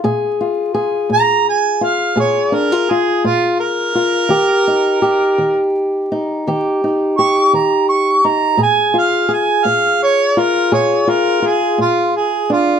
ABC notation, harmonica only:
X:1
M:12/8
L:1/8
Q:3/8=56
K:Eb
V:1 name="Harmonica"
z3 b a f _d B A F B2- | B4 z4 _d' b d' b | a f a f _d B d B A F A F |]